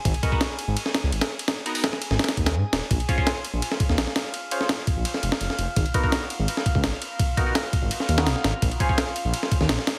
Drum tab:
RD |x-x-x---x---x---x---x---x-x---x-|x---x---x---x---xxx-x-x-----x---|x-x-x---x---x---x---x---x---x---|x---x---x---x---x---x---x---x---|
HH |--------------------------------|------o-------------------------|--------------------------------|--------------------------------|
SD |--------o---------o-o-----o-----|o-------o-o---o-ooo---o-----o---|--------o---------o---o-o-o-o---|------o-o---------o---o---o-----|
BD |o---o-o-------------------------|--------------------o-----------|o---o-o-------------o-----------|------------o-------------------|

RD |x-x-x---x---x---x---x---x---x---|x---x---x---x---x---x---x---x---|x-x-x---x---x---x---x---x---x---|
HH |--------------------------------|--------------------------------|--------------------------------|
SD |--------o---------o-----o-------|--------o---------o---o-o-o-o---|--------o---------o---o-o-o-o---|
BD |o---o-o-------------o-o---------|o---o-------o-------------------|o---o-o-------------o-----------|